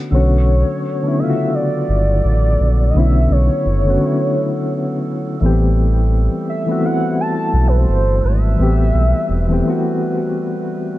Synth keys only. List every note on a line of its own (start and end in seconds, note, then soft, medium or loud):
0.00 0.10 D3 medium
0.00 0.12 A3 medium
0.00 0.13 B3 medium
0.00 0.14 C#4 medium
0.00 0.14 F#4 medium
0.10 0.69 D3 medium
0.10 0.70 A3 medium
0.10 0.70 B3 medium
0.15 0.71 C#4 medium
0.15 0.72 F#4 medium
1.03 1.12 D3 medium
1.03 1.12 A3 medium
1.03 1.13 B3 medium
1.03 1.14 C#4 medium
1.08 1.14 E4 medium
1.17 2.08 D3 medium
1.17 2.09 A3 medium
1.17 2.09 B3 medium
1.21 2.10 C#3 medium
1.21 1.28 F4 medium
1.30 2.14 F#4 medium
2.94 3.52 D3 medium
2.94 3.52 A3 medium
2.94 3.53 B3 medium
2.98 3.54 C#4 medium
2.98 3.54 E4 medium
3.85 3.94 D3 medium
3.85 3.95 A3 medium
3.85 3.95 B3 medium
3.89 3.96 C#4 medium
3.89 3.97 F#4 medium
4.00 4.90 D3 medium
4.00 4.91 A3 medium
4.00 4.92 B3 medium
4.04 4.92 C#4 medium
4.04 4.93 E4 medium
5.40 6.41 E3 medium
5.40 6.42 A3 medium
5.40 6.42 B3 medium
5.44 6.43 C4 medium
5.44 6.44 G4 medium
6.66 6.76 E3 medium
6.66 6.77 A3 medium
6.66 6.77 B3 medium
6.70 6.78 C4 medium
6.70 6.79 F#4 medium
6.80 7.72 E3 medium
6.80 7.72 A3 medium
6.80 7.73 B3 medium
6.80 7.74 C4 medium
6.86 7.74 E4 loud
8.56 9.15 E3 medium
8.56 9.16 A3 medium
8.56 9.17 B3 medium
8.61 9.17 C4 medium
8.61 9.18 G4 medium
9.48 9.58 E3 medium
9.48 9.59 A3 medium
9.48 9.59 B3 medium
9.48 9.60 C4 medium
9.53 9.61 G4 medium
9.64 10.55 E3 medium
9.64 10.55 A3 medium
9.64 10.56 B3 medium
9.64 10.57 C4 medium
9.70 10.58 F#4 medium